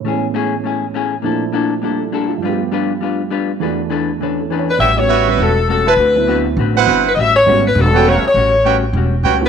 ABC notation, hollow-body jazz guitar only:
X:1
M:4/4
L:1/8
Q:"Swing" 1/4=202
K:Emix
V:1 name="Hollow-body jazz guitar"
[A,CEG] z [A,CEG] z [A,CEG] z [A,CEG] z | [_B,DEA] z [B,DEA] z [B,DEA] z [B,DEA] z | [=G,D=FB] z [G,DFB] z [G,DFB] z [G,DFB] z | [E,DAB] z [E,DAB] z [E,DAB] z [E,DAB] z |
[K:Amix] [A,,G,CF] z [A,,G,CF] z [A,,G,CF] z [A,,G,CF] z | [D,=CFB] z [D,CFB] z [D,CFB] z [D,CFB] z | [A,,G,CF] z [A,,G,CF] z [A,,G,CF] z [A,,G,CF] z | [A,,G,CF] z [A,,G,CF] z [A,,G,CF] z [A,,G,CF] z |]